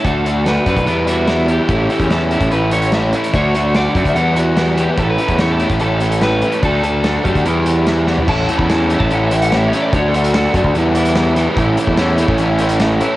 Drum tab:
CC |----------------|----------------|----------------|----------------|
HH |x-x-x-xxx-x-x-x-|x-xxx-xxx-xxx-xx|x-x-x-xxx-x-x-x-|x-xxx-xxx-xxx-xx|
SD |----o-------o---|----o-------o---|----o-------o---|----o-------o---|
FT |----------------|----------------|----------------|----------------|
BD |o-----oo--------|o--o---o--------|o-----oo--------|o--o---o--------|

CC |----------------|x---------------|----------------|----------------|
HH |x-x-x-xxx-x-x---|--x-x-x-x-xxx-x-|x-xxx-x-x-xxx-x-|x-x-x-x-x-xxx-x-|
SD |----o-------o-o-|----o-------o---|----o-------o-o-|----o-------o---|
FT |---------------o|----------------|----------------|----------------|
BD |o-----oo--------|o--o---o--------|o-----oo--------|o--o---o--------|